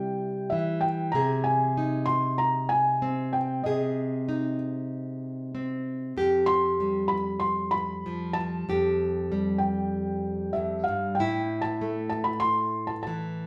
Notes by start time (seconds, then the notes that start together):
Already playing: C3 G3 E4 G5
0.50 E3 E5
0.81 G5
1.12 C3 G#4 A#5
1.44 G#5
1.77 D#4
2.06 C6
2.38 A#5
2.69 G#5
3.02 C4
3.33 G5
3.64 C3 G#4 D#5
4.29 D#4
5.55 C4
6.17 F2 G4
6.46 C6
6.80 G3
7.08 B5
7.40 C6
7.71 B5
8.06 F3
8.33 A5
8.69 F2 G4
9.32 G3
9.58 G5
10.53 F2 E5
10.84 F5
10.89 G2
11.15 G5
11.19 A2 E4
11.62 A5
11.81 A3
12.10 A5
12.24 B5
12.40 C6
12.87 A5
13.03 A5
13.07 E3